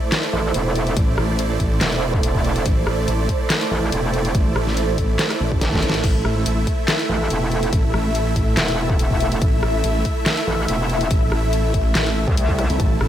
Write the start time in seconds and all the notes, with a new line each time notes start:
Already playing: A3 E4 A4 C5 D5
0.12 snare, clap, closed hi-hat
0.23 closed hi-hat
0.33 A1
0.54 E1, closed hi-hat
0.75 closed hi-hat
0.87 closed hi-hat
0.97 A1, kick, closed hi-hat
1.18 A1, cross-stick
1.39 closed hi-hat
1.60 A1, kick, closed hi-hat
1.81 E1, snare, clap, closed hi-hat
1.92 closed hi-hat
2.13 kick
2.23 E1, closed hi-hat
2.35 kick
2.44 closed hi-hat
2.56 closed hi-hat
2.66 A1, kick, closed hi-hat
2.87 A1, cross-stick
3.08 A1, closed hi-hat
3.29 kick, closed hi-hat
3.50 snare, clap, closed hi-hat
3.61 closed hi-hat
3.71 A1
3.92 E1, closed hi-hat
4.14 closed hi-hat
4.25 closed hi-hat
4.35 A1, kick, closed hi-hat
4.56 A1, cross-stick
4.67 snare
4.77 closed hi-hat
4.98 A1, kick, closed hi-hat
5.19 snare, clap, closed hi-hat
5.30 cross-stick, closed hi-hat
5.40 A1
5.52 kick
5.61 G1, snare, closed hi-hat
5.73 kick, snare
5.83 A1, closed hi-hat
5.90 snare
5.94 closed hi-hat
6.04 A1 E5, kick, closed hi-hat, crash
6.25 A1, cross-stick
6.37 E5
6.46 A1, closed hi-hat
6.67 kick, closed hi-hat
6.88 snare, clap, closed hi-hat
6.99 closed hi-hat
7.09 A1
7.30 E1, closed hi-hat
7.52 closed hi-hat
7.63 closed hi-hat
7.73 A1, kick, closed hi-hat
7.94 A1, cross-stick
8.15 closed hi-hat
8.36 A1, kick, closed hi-hat
8.57 E1, snare, clap, closed hi-hat
8.68 closed hi-hat
8.90 kick
8.99 E1, closed hi-hat
9.11 kick
9.20 closed hi-hat
9.32 closed hi-hat
9.42 A1, kick, closed hi-hat
9.63 A1, cross-stick
9.84 A1, closed hi-hat
10.05 kick, closed hi-hat
10.26 snare, clap, closed hi-hat
10.37 closed hi-hat
10.47 A1
10.68 E1, closed hi-hat
10.90 closed hi-hat
11.01 closed hi-hat
11.11 A1, kick, closed hi-hat
11.32 A1, cross-stick
11.53 closed hi-hat
11.74 A1, kick, closed hi-hat
11.95 A1, snare, clap, closed hi-hat
12.06 closed hi-hat
12.28 C2, kick
12.37 C2, closed hi-hat
12.49 kick
12.59 cross-stick, closed hi-hat, zap
12.70 C2, closed hi-hat
12.80 A1 A5, kick, closed hi-hat
13.01 A1, cross-stick